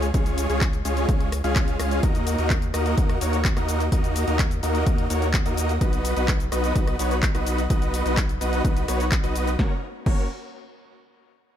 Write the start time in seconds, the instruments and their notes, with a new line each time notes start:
Already playing: sub bass C#2
0.02 closed hi-hat, shaker
0.14 sub bass C#2, supersaw synth G#3 C#4 F4 G#4 C#5, kick, closed hi-hat, shaker
0.26 closed hi-hat, shaker
0.38 open hi-hat, shaker
0.50 sub bass C#2, supersaw synth G#3 C#4 F4 G#4 C#5, closed hi-hat, shaker
0.61 kick, clap, closed hi-hat, shaker
0.73 closed hi-hat, shaker
0.85 sub bass C#2, supersaw synth G#3 C#4 F4 G#4 C#5, open hi-hat, shaker
0.97 closed hi-hat, shaker
1.09 sub bass C#2, supersaw synth G#3 C#4 F4 G#4 C#5, kick, closed hi-hat, shaker
1.20 closed hi-hat
1.32 cross-stick, open hi-hat, shaker
1.44 sub bass C#2, supersaw synth G#3 C#4 F4 G#4 F5, closed hi-hat, shaker
1.56 kick, clap, closed hi-hat, shaker
1.68 closed hi-hat, shaker
1.79 sub bass C#2, supersaw synth G#3 C#4 F4 G#4 F5, cross-stick, open hi-hat, shaker
1.91 closed hi-hat, shaker
2.03 sub bass D#2, supersaw synth A#3 D#4 F#4 A#4 D#5, kick, closed hi-hat, shaker
2.15 closed hi-hat, shaker
2.27 open hi-hat, shaker
2.38 sub bass D#2, supersaw synth A#3 D#4 F#4 A#4 D#5, closed hi-hat, shaker
2.50 kick, clap, closed hi-hat, shaker
2.62 closed hi-hat, shaker
2.74 sub bass D#2, supersaw synth A#3 D#4 F#4 A#4 D#5, cross-stick, open hi-hat, shaker
2.86 closed hi-hat, shaker
2.98 sub bass D#2, supersaw synth A#3 D#4 F#4 A#4 D#5, kick, closed hi-hat, shaker
3.09 cross-stick, closed hi-hat
3.21 sub bass D#2, supersaw synth A#3 D#4 F#4 A#4 C#5, open hi-hat, shaker
3.33 closed hi-hat, shaker
3.45 kick, clap, closed hi-hat, shaker
3.57 sub bass D#2, supersaw synth A#3 D#4 F#4 A#4 D#5, cross-stick, closed hi-hat, shaker
3.69 open hi-hat, shaker
3.80 closed hi-hat, shaker
3.92 sub bass D#2, supersaw synth A#3 D#4 F#4 A#4 D#5, kick, closed hi-hat, shaker
4.04 closed hi-hat, shaker
4.16 open hi-hat, shaker
4.28 sub bass D#2, supersaw synth A#3 D#4 F#4 A#4 D#5, closed hi-hat, shaker
4.39 kick, clap, closed hi-hat, shaker
4.51 closed hi-hat, shaker
4.63 sub bass D#2, supersaw synth A#3 D#4 F#4 A#4 D#5, open hi-hat, shaker
4.75 closed hi-hat, shaker
4.87 sub bass D#2, supersaw synth A#3 D#4 F#4 A#4 D#5, kick, closed hi-hat, shaker
4.98 closed hi-hat
5.10 sub bass D#2, supersaw synth A#3 D#4 F#4 A#4 C#5, open hi-hat, shaker
5.22 closed hi-hat, shaker
5.34 kick, clap, closed hi-hat, shaker
5.46 sub bass D#2, supersaw synth A#3 D#4 F#4 A#4 D#5, closed hi-hat, shaker
5.57 open hi-hat, shaker
5.69 closed hi-hat, shaker
5.81 sub bass B1, supersaw synth B3 D#4 F#4 B4 D#5, kick, closed hi-hat, shaker
5.93 closed hi-hat, shaker
6.05 open hi-hat, shaker
6.16 sub bass B1, supersaw synth B3 D#4 F#4 B4 D#5, closed hi-hat, shaker
6.28 kick, clap, closed hi-hat, shaker
6.40 closed hi-hat, shaker
6.52 sub bass B1, supersaw synth B3 D#4 F#4 B4 D#5, cross-stick, open hi-hat, shaker
6.64 closed hi-hat, shaker
6.76 sub bass B1, supersaw synth B3 D#4 F#4 B4 D#5, kick, closed hi-hat, shaker
6.87 cross-stick, closed hi-hat
6.99 sub bass B1, supersaw synth B3 D#4 F#4 B4 C#5, open hi-hat, shaker
7.11 closed hi-hat, shaker
7.23 kick, clap, closed hi-hat, shaker
7.35 sub bass B1, supersaw synth B3 D#4 F#4 B4 D#5, cross-stick, closed hi-hat, shaker
7.47 open hi-hat, shaker
7.58 closed hi-hat, shaker
7.70 sub bass B1, supersaw synth B3 D#4 F#4 B4 D#5, kick, closed hi-hat, shaker
7.82 closed hi-hat, shaker
7.94 open hi-hat, shaker
8.05 sub bass B1, supersaw synth B3 D#4 F#4 B4 D#5, closed hi-hat, shaker
8.17 kick, clap, closed hi-hat, shaker
8.29 closed hi-hat, shaker
8.41 sub bass B1, supersaw synth B3 D#4 F#4 B4 D#5, open hi-hat, shaker
8.53 closed hi-hat, shaker
8.65 sub bass B1, supersaw synth B3 D#4 F#4 B4 D#5, kick, closed hi-hat, shaker
8.77 closed hi-hat, shaker
8.88 sub bass B1, supersaw synth B3 D#4 F#4 B4 C#5, cross-stick, open hi-hat, shaker
9.00 closed hi-hat, shaker
9.12 kick, clap, closed hi-hat, shaker
9.24 sub bass B1, supersaw synth B3 D#4 F#4 B4 D#5, closed hi-hat, shaker
9.36 open hi-hat, shaker
9.47 closed hi-hat, shaker
9.59 sub bass F#1, supersaw synth A#3 C#4 F#4 A#4 C#5, kick, snare
10.06 sub bass F#1, supersaw synth A#3 C#4 F#4 A#4 C#5, kick, crash